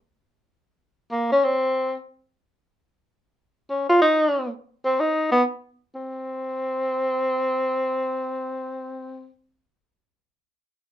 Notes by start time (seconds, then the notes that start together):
1.11 A#3
1.32 C#4
1.44 C4
3.70 C#4
3.89 F4
4.01 D#4
4.85 C4
5.00 D#4
5.32 B3
5.95 C4